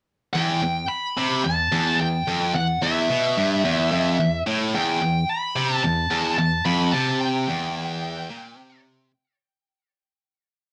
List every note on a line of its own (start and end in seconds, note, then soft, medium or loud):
0.33 0.61 E2 loud
0.33 0.85 G5 medium
0.62 0.84 E2 medium
0.89 1.40 B5 loud
1.17 1.44 C3 loud
1.44 1.67 E2 medium
1.44 2.01 A5 loud
1.72 1.99 E2 loud
2.00 2.22 E2 medium
2.00 2.55 G5 medium
2.28 2.54 F2 loud
2.55 2.76 E2 medium
2.55 2.83 F#5 medium
2.82 3.09 E2 medium
2.82 4.43 E5 medium
3.10 3.36 B2 loud
3.37 3.64 G2 loud
3.65 3.91 E2 loud
3.92 4.18 F2 loud
4.20 4.41 E2 medium
4.47 4.73 A2 loud
4.74 5.00 E2 loud
4.74 5.31 G5 medium
5.02 5.23 E2 medium
5.30 5.74 B5 loud
5.56 5.83 C3 loud
5.74 5.84 A5 loud
5.84 6.06 E2 medium
5.84 6.37 A5 loud
6.11 6.37 E2 loud
6.38 6.60 E2 medium
6.38 6.65 A5 medium
6.66 6.92 F2 loud
6.66 6.91 B5 loud
6.93 7.47 C3 loud
6.93 7.18 A5 medium
7.21 8.80 G5 medium
7.48 8.29 E2 loud
8.29 8.57 A#2 medium
8.57 9.10 C3 loud